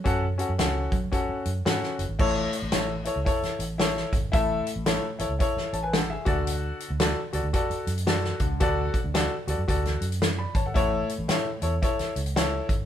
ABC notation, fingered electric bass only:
X:1
M:4/4
L:1/16
Q:"Swing" 1/4=112
K:A
V:1 name="Fingered electric bass" clef=bass
F,,3 F,, C,,2 F,2 z2 F,,2 G,, z F,,, G,,, | A,,,2 z A,,, A,,,3 C,, z2 A,,,4 G,,,2 | A,,,2 z A,,,2 z A,,, C,, z2 A,,,4 D,,2- | D,,2 z D,,2 z D,, D,, z2 F,,4 C,,2 |
D,,2 z D,,2 z D,, F,, D,,2 F,,4 G,,,2 | A,,,2 z A,,, A,,2 E,,2 z2 C,,4 G,,,2 |]